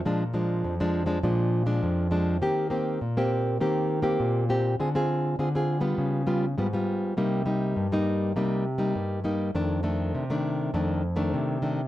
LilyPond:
\new Staff \with { instrumentName = "Nylon-string guitar" } { \time 4/4 \key bes \major \tempo 4 = 101 << { <f aes d'>16 r16 <f aes d'>8. <f aes d'>8 <f aes d'>16 <f aes d'>8. <f aes d'>8. <f aes d'>8 | <bes c' g'>8 <bes c' g'>8 r16 <bes c' g'>8. <bes c' g'>8. <bes c' g'>8. <bes c' g'>8 | <c' f' aes'>16 <c' f' aes'>8. <c' f' aes'>16 <c' f' aes'>8 <g ces' f'>8. <g ces' f'>16 r16 <g ces' f'>16 <g ces' f'>8. | <g bes ees'>8 <g bes ees'>8. <g bes ees'>8. <g bes ees'>8 r16 <g bes ees'>8. <g bes ees'>8 |
<ees a d'>8 <ees a d'>8. <ees a d'>8. <ees a d'>8 r16 <ees a d'>8. <ees a d'>16 r16 | } \\ { bes,4 f,4 bes,4 f,4 | ees4 bes,4 ees4 bes,4 | d4 d4 des4 aes,4 | c4 g,4 c4 g,4 |
f,4 c4 f,4 c4 | } >> }